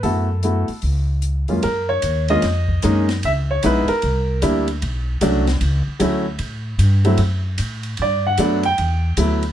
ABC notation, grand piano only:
X:1
M:4/4
L:1/8
Q:"Swing" 1/4=151
K:F#phr
V:1 name="Grand piano"
A4 z4 | ^A c2 _e4- e | e c B _B4 z | z8 |
z8 | d f2 g4- g |]
V:2 name="Grand piano"
[A,B,EF] z [A,B,EF] z4 [F,,^G,^A,C^E] | z3 [^G,^A,C^E] z2 [G,A,C_E] z | z2 [^G,B,_E=E] z3 [=G,_B,DE] z | z2 [F,A,CD] z3 [F,A,CE] z |
z3 [F,A,=CE] z4 | z2 [F,A,B,D] z3 [F,A,B,E] z |]